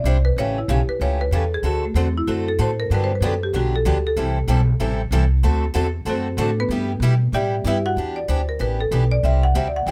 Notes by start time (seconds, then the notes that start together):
0.04 C2 G3 D4 E4 C5
0.25 B4
0.36 A1 C#3 E3 A3 C#4 G4 C#5
0.58 E4
0.68 B1 C#3 E3 A3 C#4 G4
0.88 B4, muted upright bass stroke
1.00 C#2 C#3 E3 A3 C#4 G4 C#5
1.21 B4
1.31 E2 C#3 E3 A3 C#4 G4
1.35 A4
1.54 G#4
1.62 D2 D3 A3 C4 F#4 A4
1.85 A3
1.94 E2 D3 A3 C4 F#4 A4
2.18 E4
2.27 F#2 D3 A3 C4 F#4 A4
2.48 A4
2.59 A2 D3 A3 C4 F#4 A4 C5
2.80 A#4
2.90 G2 D3 F#3 B3 D4 G4
2.94 B4
3.04 C5
3.15 B4
3.20 F#2 D3 F#3 B3 D4 G4
3.25 A4
3.43 G4
3.53 B1 D3 F#3 B3 D4 F#4 G4
3.76 A4
3.85 D2 D3 F#3 B3 D4 G4
4.07 A4
4.16 C2 C3 E3 G3 C4 E4 A4
4.47 B1 C3 E3 G3 C4 E4 A4
4.80 A1 C3 E3 G3 C4 E4 A4
5.11 C2 C3 E3 G3 C4 E4 A4
5.43 D2 D3 A3 C4 F#4 A4
5.74 E2 D3 A3 C4 F#4 A4
6.05 F#2 D3 A3 C4 F#4 A4
6.09 C4 F#4 A4 C5
6.37 A2 D3 A3 C4 F#4 A4
6.41 A3 D4 F#4
6.60 B3 B4
6.68 G2 G3 B3 E4 G4
7.00 B2 G3 B3 E4
7.04 G4
7.32 A2 G3 B3 E4 G4 D5 E5 G5
7.36 G4
7.64 G2 G3 B3 E4 G4 B4 E5
7.86 F#4 F#5
7.96 E2 E3 B3 D4 G4
8.16 D5
8.28 D2 E3 B3 D4 G4 C5
8.49 A#4
8.59 A1 E3 B3 D4 G4 B4
8.81 A4
8.91 B1 E3 B3 D4 G4 B4
9.12 D5
9.23 C2 C3 G3 C4 E4 G4 E5
9.43 F#5
9.54 D2 C3 G3 C4 E4 G4 E5
9.68 D5
9.76 F#5
9.86 E2 C3 G3 C4 G5